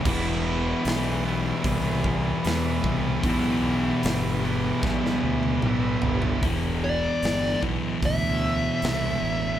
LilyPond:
<<
  \new Staff \with { instrumentName = "Lead electric guitar" } { \time 4/4 \key e \minor \tempo 4 = 75 r1 | r1 | r8 d''4 r8 e''2 | }
  \new Staff \with { instrumentName = "Overdriven electric guitar" } { \time 4/4 \key e \minor <e g b e'>4. <e g b e'>4. <e g b e'>4 | <e g b e'>4. <e g b e'>4. <e g b e'>4 | r1 | }
  \new Staff \with { instrumentName = "Distorted electric guitar" } { \clef bass \time 4/4 \key e \minor <e, b, e>1 | <e, b, e>1 | <e, b, e>4. <e, b, e>4. <e, b, e>4 | }
  \new Staff \with { instrumentName = "Distorted electric guitar" } { \clef bass \time 4/4 \key e \minor <e, b, e>1 | <e, b, e>1 | <e, b, e>1 | }
  \new Staff \with { instrumentName = "Fingered electric bass" } { \clef bass \time 4/4 \key e \minor e,,4 b,,4 c,4 e,8 c,8 | b,,4 g,,4 b,,8 d,8 b,,8 g,,8 | e,,4 g,,8 b,,8 d,4 c,8 a,,8 | }
  \new DrumStaff \with { instrumentName = "Drums" } \drummode { \time 4/4 <cymc bd>4 <hho sn>4 <hho bd>8 bd8 <hho sn>8 bd8 | <hho bd>4 <hho sn>4 <bd sn>16 sn8 tommh16 toml8 tomfh16 tomfh16 | <hho bd>4 <hho sn>8 bd8 <hho bd>4 <hho sn>4 | }
>>